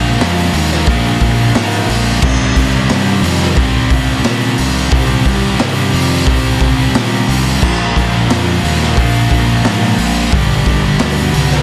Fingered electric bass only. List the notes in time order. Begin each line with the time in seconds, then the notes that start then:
Already playing: A#1
0.20 F2
0.54 D#2
0.87 A#1
1.21 A#1
1.55 G#2
1.89 A#1
2.23 C2
2.56 C2
2.90 G2
3.22 F2
3.57 C2
3.90 C2
4.25 A#2
4.59 C2
4.92 C2
5.25 C2
5.59 G2
5.93 F2
6.27 C2
6.61 C2
6.95 A#2
7.28 C2
7.62 A#1
7.97 A#1
8.29 F2
8.63 D#2
8.97 A#1
9.31 A#1
9.65 G#2
9.98 A#1
10.32 G1
10.66 G1
11.01 D2
11.34 C2